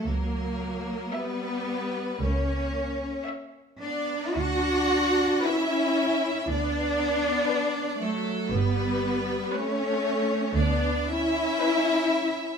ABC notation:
X:1
M:4/4
L:1/8
Q:1/4=57
K:Bm
V:1 name="Violin section"
^A2 B2 c2 z d | f2 e2 d3 A | B2 c2 d e3 |]
V:2 name="Violin section"
z2 e2 z2 e2 | z2 B2 z2 B2 | z2 B2 z2 B2 |]
V:3 name="Cello section"
^A,2 B,2 C2 z D | F2 E2 D3 A, | B,2 C2 D E3 |]
V:4 name="Viola section"
F,2 G,2 ^A,2 z B, | D2 C2 B,3 F, | G,2 A,2 B, C3 |]
V:5 name="Double bass section" clef=bass
C,,2 z2 C,,2 z2 | D,,2 z2 D,,2 z2 | G,,,2 z2 D,,2 z2 |]